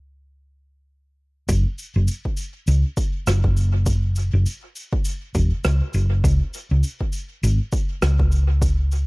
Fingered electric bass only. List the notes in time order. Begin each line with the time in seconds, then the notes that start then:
Already playing: C#2
1.49 F#1
1.96 F#1
2.68 C#2
3.27 F#1
4.33 F#1
5.35 E1
5.65 C#2
5.94 F#1
6.24 C#2
6.71 C#2
7.43 G#1
8.03 C#2